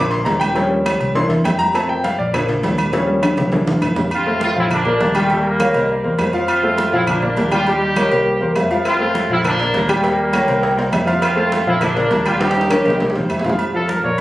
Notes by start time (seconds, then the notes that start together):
Already playing: A#1 F3 A#3 D4 D6
0.11 C6, cowbell, high conga
0.25 D#2 A#5, cowbell, high conga, low timbale, low agogo
0.40 G5, high conga, low agogo, claves
0.53 F3 G3 C#4, cowbell, high conga, low agogo
0.71 high conga
0.86 cowbell, high conga, low timbale, low agogo, claves
1.01 C2, high conga, low agogo
1.15 E3 A#3 D4 C6, cowbell, high conga
1.29 E2 E5, cowbell, high conga
1.44 F2 G5, cowbell, high conga, low timbale, low agogo, claves
1.59 A#5, high conga, low agogo
1.73 F3 A3 C4 A5, cowbell, low agogo, claves
1.89 G5, high conga
2.04 F5, cowbell, high conga, low timbale, low agogo
2.19 A#1 D5, high conga
2.33 F3 A#3 D4, cowbell, high conga, low conga, low agogo, claves
2.48 cowbell, high conga, low conga
2.63 D#2, cowbell, high conga, low timbale, low agogo
2.78 high conga, low agogo, claves
2.92 F3 G3 C#4, cowbell, high conga, low agogo
3.23 cowbell, high bongo, low timbale, low agogo, claves
3.37 C2, high bongo, low conga, high timbale, low agogo
3.52 E3 A#3 D4, cowbell, high bongo, low conga
3.67 E2, cowbell, low bongo, low conga, high timbale
3.82 F2, cowbell, low bongo, low agogo, claves
3.96 low bongo, low conga, low timbale, low agogo
4.11 C4 F4, high conga, low agogo, claves
4.26 A3 A4 C5, high conga
4.41 C4 F4, high conga, low timbale, low agogo
4.56 A#1 F3 C4 E4 F4 F5, high conga
4.70 A#3 D4, high conga, low conga, low agogo, claves
4.85 A#3 A#4 D5, high conga, low conga
5.01 D#2, high conga, low timbale, low agogo
5.15 G3 A3 F4 G4 G5, high conga, low agogo, claves
5.30 G3 A#3 G4 G5, low agogo
5.45 high conga
5.60 A#3 A#4 C#5 F5, high conga, low timbale, low agogo, claves
5.74 C2 A#3 A#4 C5 D#5, high conga, low agogo
5.89 D5, high conga
6.04 E2 A#3 A#4 C5, high conga
6.19 F2 C5, high conga, low timbale, low agogo, claves
6.33 F3 F4 F5, low agogo
6.48 C4 F4, high conga, low agogo, claves
6.63 A3 A4 C5, high conga
6.78 high conga, low timbale, low agogo
6.93 A#1 F3 C4 E4 F4 F5, high conga
7.07 A#3 D4, high conga, low conga, low agogo, claves
7.22 A#3 A#4 D5, high conga, low conga
7.37 D#2, high conga, low timbale, low agogo
7.52 G3 D4 F4 G4 G5, high conga, low agogo, claves
7.67 G3 D#4 G4 G5, high conga, low agogo
7.82 high conga
7.96 A#3 A#4 C#5 D#5, high conga, low timbale, low agogo, claves
8.11 C2 A#3 A#4 C5, high conga, low agogo
8.18 C#5
8.26 C#5, high conga
8.30 C5
8.40 E2 A#3 A#4 C5, high conga
8.55 F2 F5, high conga, low timbale, low agogo, claves
8.60 E5
8.70 F3 F4 F5, high conga, low agogo
8.85 C4 F4, cowbell, high conga, low agogo, claves
9.00 A3 A4 C5, high conga
9.15 cowbell, high conga, low timbale, low agogo
9.30 A#1 F3 C4 E4 F4 F5, high conga
9.44 A#3 D4, cowbell, high conga, low conga, low agogo, claves
9.59 A#3 A#4 D5, cowbell, high conga
9.74 D#2, cowbell, high conga, low timbale, low agogo
9.89 G3 A3 F4 G4 G5, high conga, low agogo, claves
10.04 G3 A#3 G4 G5, cowbell, low agogo
10.19 high conga
10.33 A#3 A#4 C#5 G5, cowbell, high conga, low timbale, low agogo, claves
10.47 C2 A#3 A#4 C5, high conga, low agogo
10.63 cowbell, high conga
10.77 A#3 A#4 C5 D5, cowbell, high conga
10.92 F2 E5, cowbell, high conga, low timbale, low agogo, claves
11.06 F3 F4 F5, low agogo
11.22 C4 F4, cowbell, high conga, low agogo, claves
11.36 A3 A4 C5, high conga
11.52 cowbell, high conga, low timbale, low agogo
11.67 A#1 F3 C4 E4 F4 F5, high conga
11.81 A#3 D4, cowbell, high conga, low conga, low agogo, claves
11.96 A#3 A#4 D5, cowbell, high conga, low conga
12.11 D#2, cowbell, high conga, low timbale, low agogo
12.26 G3 D4 F4 G4 G5, high conga, low agogo, claves
12.40 G3 D#4 G4 G5, cowbell, high conga, high timbale, low agogo
12.51 high timbale
12.56 high conga
12.61 high timbale
12.70 A#3 A#4 C#5, cowbell, high bongo, high conga, low agogo, claves
12.85 C2 A#3 A#4 C5 D#5, high bongo, high conga, low agogo
12.90 low timbale
13.00 C5, cowbell, low bongo, high conga, low timbale
13.10 low timbale
13.15 E2 A#3 A#4 C5, cowbell, low bongo, high conga
13.29 F2 E5, cowbell, high conga, low agogo, claves
13.39 low timbale
13.44 F3 F4 F5, low bongo, high conga, low agogo
13.49 low timbale
13.59 high conga, low agogo
13.74 F3 F4 A4 F5, high conga
13.88 A#4, high conga, low timbale, low agogo
14.04 A#1 A#3 A#4 C#5 D5, high conga